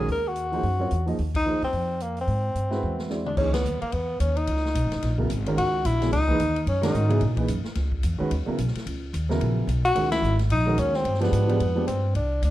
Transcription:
0.08 upright bass D#2, tenor saxophone A#4, open hi-hat
0.28 tenor saxophone F#4
0.36 closed hi-hat
0.52 grand piano F3 A#3 D#4 G#4 C5, open hi-hat
0.63 upright bass F#2, open hi-hat
0.79 grand piano F#3 C4 F4 A#4 C#5
0.91 upright bass E2, closed hi-hat
1.06 grand piano F3 A#3 D#4 G#4 D#5, open hi-hat
1.19 upright bass D#2, open hi-hat
1.35 tenor saxophone D#4, kick, ride
1.46 grand piano F3 A#3 D#4 G#4 C5
1.62 upright bass C#2, tenor saxophone C4, open hi-hat
1.73 upright bass F2, open hi-hat
2.00 tenor saxophone A#3, closed hi-hat
2.17 open hi-hat
2.21 tenor saxophone C4
2.27 upright bass G#2, open hi-hat
2.55 upright bass G2, closed hi-hat
2.70 grand piano G#3 C4 E4 F#4 B4, snare
2.83 upright bass E2
2.99 snare
3.09 grand piano G#3 C4 E4 F#4 D5, snare
3.26 tenor saxophone D4, mid tom
3.37 upright bass C#2, grand piano E3 A#3 D#4 G#4 C#5, tenor saxophone C#4, kick, crash
3.53 tenor saxophone B3, snare, ride
3.65 upright bass D#2, hi-hat pedal
3.81 tenor saxophone A#3, muted upright bass stroke, ride
3.92 upright bass E2, tenor saxophone B3, ride
4.20 upright bass D#2, tenor saxophone C#4, hi-hat pedal, ride
4.37 tenor saxophone D#4, ride
4.47 upright bass C#2, ride
4.56 snare
4.65 snare
4.75 upright bass B1, hi-hat pedal, ride
4.84 upright bass G#1
4.92 upright bass E1, snare, ride
5.02 upright bass A#1, snare, ride
5.18 grand piano C#3 F#3 B3 E4 A#4, kick
5.30 upright bass G#1, hi-hat pedal, ride
5.46 grand piano D#3 G#3 C#4 F#4 A#4, ride
5.57 upright bass C#2, tenor saxophone F#4, ride
5.85 upright bass A#1, tenor saxophone E4, hi-hat pedal, ride
6.01 grand piano C#3 F#3 B3 E4 G#4, snare, ride
6.12 upright bass C#2, tenor saxophone D#4, snare, ride
6.27 grand piano E3 A#3 D#4 G#4 B4, kick
6.40 upright bass D#2, hi-hat pedal, ride
6.56 ride
6.66 upright bass F#2, tenor saxophone C#4, ride
6.82 grand piano D#3 G#3 C#4 F#4 A#4, tenor saxophone D#4, snare, ride
6.94 upright bass G#2, hi-hat pedal
7.09 grand piano C#3 F#3 B3 E4 G#4, ride
7.21 upright bass A#2, ride
7.36 grand piano E3 A#3 D#4 G#4 B4, kick, ride
7.48 upright bass F#2, hi-hat pedal, ride
7.64 muted upright bass stroke, snare
7.75 upright bass C#2, snare, ride
7.92 kick
8.03 upright bass E2, hi-hat pedal, ride
8.19 grand piano D#3 G#3 C#4 F#4 B4, muted upright bass stroke
8.31 upright bass D#2, ride
8.46 grand piano C#3 F#3 B3 E4 A#4, muted upright bass stroke
8.58 upright bass B1, hi-hat pedal, ride
8.68 snare
8.74 muted upright bass stroke, snare, ride
8.86 upright bass C#2, ride
9.13 upright bass D#2, hi-hat pedal, ride
9.29 grand piano C#3 F#3 B3 E4 A#4, snare
9.40 upright bass A#1, ride
9.67 upright bass B1, hi-hat pedal, ride
9.85 tenor saxophone F#4, ride
9.95 upright bass C#2, grand piano D#3 G#3 C#4 F#4 A#4, ride
10.11 tenor saxophone E4, snare, ride
10.22 upright bass G#1, hi-hat pedal
10.39 snare, ride
10.50 upright bass A#1, tenor saxophone D#4, ride
10.66 grand piano D#3 G#3 C#4 F#4 A#4
10.78 upright bass D#2, tenor saxophone C#4, hi-hat pedal, ride
10.94 tenor saxophone C4, snare
11.04 upright bass G2, ride
11.14 snare
11.20 grand piano F3 G#3 B3 D4 G4, tenor saxophone B3, snare, ride
11.32 upright bass G#2, hi-hat pedal, ride
11.47 grand piano F3 G#3 B3 D4 G4, ride
11.60 upright bass F2, ride
11.75 grand piano F3 G#3 B3 D4 G4
11.87 upright bass G2, tenor saxophone C4, hi-hat pedal, ride
12.15 upright bass C2, tenor saxophone D4, ride
12.42 upright bass D2, tenor saxophone D4, hi-hat pedal, ride

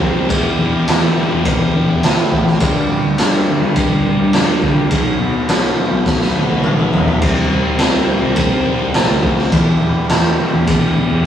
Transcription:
Already playing: picked electric bass F2, transistor combo organ D#4 G4 A#4 C5
0.00 distorted electric guitar C3 G3 C4, kick
0.14 distorted electric guitar G3 C4
0.28 distorted electric guitar E2 B2 E3, picked electric bass E2, transistor combo organ E4 B4 D5, kick, ride bell
0.57 distorted electric guitar E2 B2 E3, picked electric bass E2
0.87 distorted electric guitar E2 B2 E3, picked electric bass E2, snare, ride bell
1.15 distorted electric guitar E2 B2 E3
1.29 picked electric bass E2, distorted electric guitar B2 E3
1.45 kick, ride bell
1.58 distorted electric guitar B2 E3
1.73 distorted electric guitar E2 B2 E3
1.86 picked electric bass E2, distorted electric guitar B2 E3
2.01 picked electric bass D2, distorted electric guitar E2 B2 E3, snare, ride bell
2.17 picked electric bass A2
2.30 distorted electric guitar E2 B2 E3, kick
2.45 distorted electric guitar B2 E3, snare
2.59 distorted electric guitar G2 D3 G3, picked electric bass G2, transistor combo organ D4 A#4, kick, ride bell
2.88 distorted electric guitar G2 D3 G3, picked electric bass G2
3.17 distorted electric guitar G2 D3 G3, picked electric bass G2, snare, ride bell
3.34 snare
3.47 distorted electric guitar G2 D3 G3
3.61 picked electric bass G2, distorted electric guitar D3 G3
3.76 kick, ride bell
3.89 distorted electric guitar D3 G3
4.04 distorted electric guitar G2 D3 G3
4.19 picked electric bass G2, distorted electric guitar D3 G3
4.33 picked electric bass F2, distorted electric guitar G2 D3 G3, snare, ride bell
4.49 picked electric bass G2
4.61 distorted electric guitar G2 D3 G3, kick
4.76 distorted electric guitar D3 G3
4.89 picked electric bass B1, distorted electric guitar B2 F#3 B3, transistor combo organ D#4 F#4 B4 C#5, kick, ride bell
5.19 picked electric bass B1, distorted electric guitar B2 F#3 B3
5.48 picked electric bass B1, distorted electric guitar B2 F#3 B3, snare, ride bell
5.76 distorted electric guitar B2 F#3 B3
5.90 picked electric bass B1, distorted electric guitar F#3 B3
6.06 kick, snare
6.20 distorted electric guitar F#3 B3, snare
6.35 distorted electric guitar B2 F#3 B3, high tom
6.50 picked electric bass B1, distorted electric guitar B3, high tom
6.54 distorted electric guitar F#3
6.63 picked electric bass G#1, distorted electric guitar B2 F#3 B3, mid tom
6.78 picked electric bass B1, mid tom
6.92 distorted electric guitar B2 F#3 B3, floor tom
7.06 distorted electric guitar F#3 B3, floor tom
7.20 picked electric bass C2, distorted electric guitar C3 G3 C4, transistor combo organ G4 A#4 C5, kick, ride bell, crash
7.49 picked electric bass C2, distorted electric guitar C3 G3 C4
7.78 picked electric bass C2, distorted electric guitar C3 G3 C4, snare, ride bell
8.07 distorted electric guitar C3 G3 C4
8.21 picked electric bass C2, distorted electric guitar G3 C4
8.36 kick, ride bell
8.50 distorted electric guitar G3 C4
8.66 distorted electric guitar C3 G3 C4
8.80 picked electric bass C2, distorted electric guitar G3 C4
8.94 picked electric bass A#1, distorted electric guitar C3 G3 C4, snare, ride bell
9.09 picked electric bass D2
9.23 distorted electric guitar C3 G3 C4, kick
9.37 distorted electric guitar G3 C4, snare
9.51 picked electric bass E2, distorted electric guitar E2 B2 E3, transistor combo organ E4 B4 D5, kick, ride bell
9.81 distorted electric guitar E2 B2 E3, picked electric bass E2
10.09 picked electric bass E2, distorted electric guitar E2 B2 E3, snare, ride bell
10.38 distorted electric guitar E2 B2 E3
10.52 picked electric bass E2, distorted electric guitar B2 E3
10.67 kick, ride bell
10.82 distorted electric guitar B2 E3
10.96 distorted electric guitar E2 B2 E3
11.10 picked electric bass E2, distorted electric guitar B2 E3

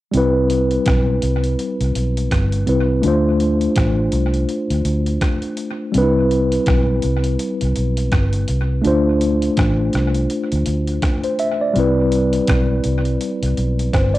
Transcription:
0.11 fingered electric bass C2, tine electric piano G3 C4, closed hi-hat
0.16 tine electric piano E4 B4
0.50 closed hi-hat
0.71 closed hi-hat
0.86 fingered electric bass B1, kick, cross-stick, closed hi-hat
1.22 fingered electric bass C2, closed hi-hat
1.44 closed hi-hat
1.59 closed hi-hat
1.80 fingered electric bass C2, closed hi-hat
1.95 fingered electric bass B1, closed hi-hat
2.17 closed hi-hat
2.31 fingered electric bass G1, kick, cross-stick, closed hi-hat
2.52 closed hi-hat
2.67 fingered electric bass C2, tine electric piano G3 C4 E4 B4, closed hi-hat
3.02 fingered electric bass D2, tine electric piano A3 D4, closed hi-hat
3.06 tine electric piano F4 C5
3.40 closed hi-hat
3.61 closed hi-hat
3.76 fingered electric bass A1, kick, cross-stick, closed hi-hat
4.12 fingered electric bass C2, closed hi-hat
4.34 closed hi-hat
4.49 closed hi-hat
4.70 fingered electric bass D2, closed hi-hat
4.85 fingered electric bass D2, closed hi-hat
5.06 closed hi-hat
5.21 kick, cross-stick, closed hi-hat
5.42 closed hi-hat
5.57 closed hi-hat
5.92 fingered electric bass C2, tine electric piano G3 C4, closed hi-hat
5.96 tine electric piano D4 B4
6.02 tine electric piano E4
6.31 closed hi-hat
6.52 closed hi-hat
6.66 fingered electric bass B1, kick, cross-stick, closed hi-hat
7.02 fingered electric bass C2, closed hi-hat
7.24 closed hi-hat
7.39 closed hi-hat
7.61 fingered electric bass C2, closed hi-hat
7.76 fingered electric bass B1, closed hi-hat
7.97 closed hi-hat
8.12 fingered electric bass G1, kick, cross-stick, closed hi-hat
8.33 closed hi-hat
8.48 fingered electric bass C2, closed hi-hat
8.82 fingered electric bass D2, tine electric piano A3 D4 F4, closed hi-hat
8.87 tine electric piano C5
9.21 closed hi-hat
9.42 closed hi-hat
9.57 fingered electric bass A1, kick, cross-stick, closed hi-hat
9.93 fingered electric bass C2, cross-stick, closed hi-hat
10.15 closed hi-hat
10.30 closed hi-hat
10.52 fingered electric bass D2, closed hi-hat
10.66 fingered electric bass D2, closed hi-hat
10.88 closed hi-hat
11.02 kick, cross-stick, closed hi-hat
11.24 tine electric piano C5, closed hi-hat
11.39 tine electric piano E5, closed hi-hat
11.61 tine electric piano D5
11.74 fingered electric bass C2, tine electric piano G3 C4 E4, closed hi-hat
11.80 tine electric piano B4
12.12 closed hi-hat
12.33 closed hi-hat
12.47 fingered electric bass B1, kick, cross-stick, closed hi-hat
12.84 fingered electric bass C2, closed hi-hat
13.05 closed hi-hat
13.21 closed hi-hat
13.43 fingered electric bass C2, closed hi-hat
13.57 fingered electric bass B1, closed hi-hat
13.79 closed hi-hat
13.93 fingered electric bass G1, tine electric piano C5, kick, cross-stick, closed hi-hat
14.14 tine electric piano D5, closed hi-hat

